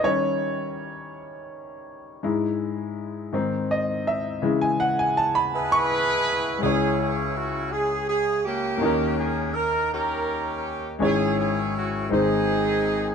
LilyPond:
<<
  \new Staff \with { instrumentName = "Horn section" } { \time 6/8 \key cis \minor \tempo 4. = 55 << { r2. | r2. | r4. b'4. | gis'8 gis'8 fis'8 gis'8 gis'8 g'8~ |
g'8 gis'8 ais'8 ais'4 r8 | gis'8 gis'8 fis'8 gis'4. | } \\ { r2. | r2. | r4. <e' gis'>4. | <cis' e'>4. r4 <ais cis'>8~ |
<ais cis'>4 r8 <cis' g'>4. | <cis' e'>4. <bis dis'>4. | } >> }
  \new Staff \with { instrumentName = "Grand piano" } { \time 6/8 \key cis \minor cis''4. r4. | r2 dis''8 e''8~ | e''16 gis''16 fis''16 gis''16 a''16 b''8 cis'''4~ cis'''16 | <gis cis' e' cis''>2. |
<ais cis' dis' ais'>2. | <gis cis' e' cis''>4. <gis bis dis' bis'>4. | }
  \new Staff \with { instrumentName = "Grand piano" } { \clef bass \time 6/8 \key cis \minor <dis g cis'>2. | <gis, gis e'>4. <gis, dis bis>8 r4 | <cis e gis>2. | <cis, cis>2. |
<dis, dis>2. | <gis,, gis,>4. <gis,, gis,>4. | }
>>